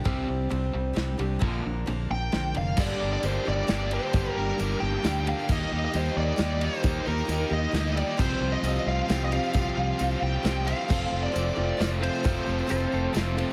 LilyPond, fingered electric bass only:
\new Staff \with { instrumentName = "Fingered electric bass" } { \clef bass \time 3/4 \key g \minor \tempo 4 = 133 c,8 c,8 c,8 c,8 c,8 c,8 | bes,,8 bes,,8 bes,,8 bes,,8 bes,,8 f,,8 | g,,8 g,,8 g,,8 g,,8 g,,4 | g,,8 g,,8 g,,8 g,,8 d,4 |
ees,8 ees,8 ees,8 ees,8 ees,4 | ees,8 ees,8 ees,8 ees,8 d,4 | c,8 c,8 c,8 c,8 c,4 | c,8 c,8 c,8 c,8 c,4 |
f,,8 f,,8 f,,8 f,,8 f,,4 | f,,8 f,,8 f,,8 f,,8 f,,4 | }